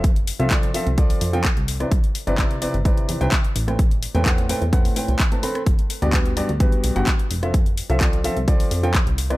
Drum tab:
HH |xxoxxxoxxooxxxox|xxoxxxoxxxoxxxox|xxoxxxoxxooxxxox|xxoxxxoxxxoxxxox|
CP |----x-------x---|----x-------x---|----x-------x---|----x-------x---|
SD |---------------r|---------------r|---------------r|---------------r|
BD |o---o---o---o---|o---o---o---o---|o---o---o---o---|o---o---o---o---|

HH |xxoxxxoxxooxxxox|
CP |----x-------x---|
SD |---------------r|
BD |o---o---o---o---|